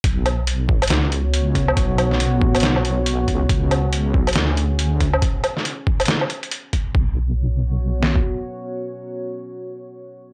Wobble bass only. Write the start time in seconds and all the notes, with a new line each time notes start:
0.04 B1
0.64 A#1
0.91 C#2
1.77 B1
2.37 A#1
2.63 B1
3.28 C#2
3.49 C#2
4.09 C2
4.36 D2
6.95 B1